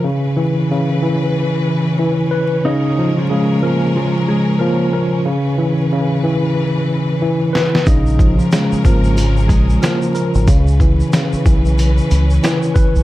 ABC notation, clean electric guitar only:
X:1
M:4/4
L:1/16
Q:"Swing 16ths" 1/4=92
K:Dblyd
V:1 name="Clean electric guitar"
z16 | [Ee]3 [F,F] [A,A]2 [B,B]2 [F,F]2 [A,A]2 [B,B]2 z2 | z16 | [Ee]3 [F,F] [A,A]2 [B,B]2 [F,F]2 [A,A]2 [B,B]2 z2 |
z16 |]